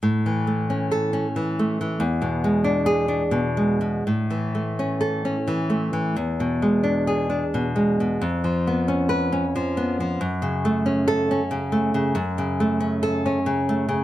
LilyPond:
\new Staff \with { instrumentName = "Nylon-string guitar" } { \clef bass \time 3/4 \key a \major \tempo 4 = 90 << { r4 \tuplet 3/2 { r8 a'4 } r4 | r4 \tuplet 3/2 { r8 gis'4 } r4 | r4 \tuplet 3/2 { r8 a'4 } r4 | r4 \tuplet 3/2 { r8 gis'4 } r4 |
r4 \tuplet 3/2 { r8 b'4 } r4 | r4 \tuplet 3/2 { r8 a'4 } r4 | \key fis \minor r4 \tuplet 3/2 { r8 a'4 } r4 | } \\ { \tuplet 3/2 { a,8 e8 a8 cis'4 cis'8 e8 a8 e8 } | \tuplet 3/2 { e,8 b,8 gis8 d'4 d'8 b,8 gis8 b,8 } | \tuplet 3/2 { a,8 e8 a8 cis'4 cis'8 e8 a8 e8 } | \tuplet 3/2 { e,8 b,8 gis8 d'4 d'8 b,8 gis8 b,8 } |
\tuplet 3/2 { eis,8 eis8 b8 cis'4 cis'8 eis8 b8 eis8 } | \tuplet 3/2 { fis,8 cis8 a8 cis'4 cis'8 cis8 a8 cis8 } | \tuplet 3/2 { fis,8 cis8 a8 cis'4 cis'8 cis8 a8 cis8 } | } >> }